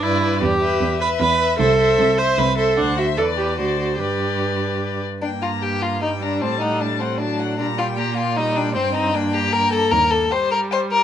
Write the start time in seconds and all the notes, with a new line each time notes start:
0.03 G2 E4 B4 D5
0.22 B4 D5
0.42 E2 G4
0.61 B4 E5
0.80 E2
1.00 B4 E5
1.19 E2 B4
1.39 B4 E5
1.58 C2 A4 C5 E5
1.79 C5 E5
1.99 C2
2.18 C5 E5
2.38 C2 B4
2.58 A4 C5 E5
2.77 D2 D4 C5 F#5
2.97 F#4 E5
3.17 E2 A4 B4 D5
3.37 G4
3.58 D2 F#4 C5 D5
3.79 F#4
3.99 G2 G4 B4 D5
5.22 G2 A#3 D4 G5
5.42 F4 A#5
5.62 G4 G5
5.82 F4 A#5
6.01 G3 D#4 G5
6.21 D4 A#5
6.41 A2 C4 A5
6.61 D#4 F#5
6.80 D4 A5
7.00 C4 F#5
7.18 F#3 D4 A5
7.39 F#5
7.58 A#2 G3 D4 A#5
7.78 F4 G5
7.98 A#3 G4 A#5
8.17 F4 G5
8.37 G3 D#4 A#5
8.56 D4 G5
8.75 G2 C4 G5
8.95 D#4 A#5
9.13 A#3 D4 G5
9.33 G4 A#5
9.53 A#4 G5
9.73 A4 A#5
9.91 D#2 A#4
10.11 A4
10.31 G3 C5 G5
10.52 A#4
10.71 C5 G5
10.92 A#4